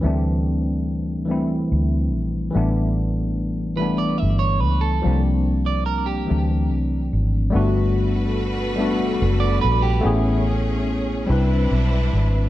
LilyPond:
<<
  \new Staff \with { instrumentName = "Clean electric guitar" } { \time 6/8 \key a \dorian \tempo 4. = 48 r2. | r4. b'16 d''16 e''16 cis''16 b'16 a'16~ | a'16 r8 d''16 bes'16 g'8 r4 r16 | \key g \lydian r2 r16 d''16 b'16 g'16~ |
g'16 r2 r8. | }
  \new Staff \with { instrumentName = "String section" } { \time 6/8 \key a \dorian r2. | r2. | r2. | \key g \lydian <g fis' a' b'>2. |
<a cis' gis'>4. <c' d' e' b'>4. | }
  \new Staff \with { instrumentName = "Tine electric piano" } { \time 6/8 \key a \dorian <e g a c' d'>4 r8 <e g a c' e'>4 r8 | <e g a b d'>4 r8 <e g a b d'>4 r8 | <f g bes c' d'>4 r8 <e fis a c' d'>4 r8 | \key g \lydian <g a b d' fis'>4 r8 <g a b d' fis'>4 r8 |
<a b cis' e' gis'>4 r8 <g c' d' e' b'>4 r8 | }
  \new Staff \with { instrumentName = "Fingered electric bass" } { \clef bass \time 6/8 \key a \dorian d,2 d,8 bes,,8 | a,,2 g,,8 cis,8 | c,4. d,8 c,8 gis,,8 | \key g \lydian g,,2 fis,,8 bes,,8 |
a,,4. c,8 b,,8 gis,,8 | }
>>